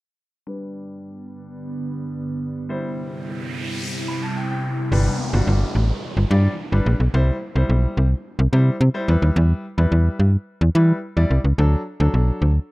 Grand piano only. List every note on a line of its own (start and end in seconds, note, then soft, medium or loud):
0.47 2.65 G3 medium
0.47 2.65 D4 medium
0.47 2.66 B4 medium
2.69 4.60 G3 medium
2.69 4.60 E4 medium
2.69 4.60 C5 medium
4.08 4.21 B5 medium
4.22 4.35 A5 medium
4.36 4.49 G5 medium
4.50 4.89 G5 medium
4.92 5.13 G3 medium
4.92 5.13 D4 medium
4.92 5.13 B4 medium
5.33 5.83 G3 medium
5.33 5.84 D4 medium
5.33 5.84 F#4 medium
6.30 6.52 G3 medium
6.30 6.52 D4 medium
6.30 6.52 D5 medium
6.72 6.94 G3 medium
6.72 6.94 D4 medium
6.72 6.94 B4 medium
7.14 7.35 G3 medium
7.14 7.35 E4 medium
7.14 7.36 C5 medium
7.55 8.06 G3 medium
7.55 8.06 E4 medium
7.55 8.06 C5 medium
8.53 8.74 G3 medium
8.53 8.74 E4 medium
8.53 8.74 C5 medium
8.94 9.07 G3 medium
8.94 9.07 E4 medium
8.94 9.08 C5 medium
9.08 9.64 G3 medium
9.08 9.64 E4 medium
9.08 9.64 B4 medium
9.78 10.28 G3 medium
9.78 10.28 E4 medium
9.78 10.28 B4 medium
10.75 10.96 G3 medium
10.75 10.97 E4 medium
10.75 10.97 B4 medium
11.17 11.38 G3 medium
11.17 11.38 E4 medium
11.17 11.38 D5 medium
11.58 11.80 F#3 medium
11.58 11.80 D4 medium
11.58 11.80 A4 medium
12.00 12.50 F#3 medium
12.00 12.50 D4 medium
12.00 12.50 A4 medium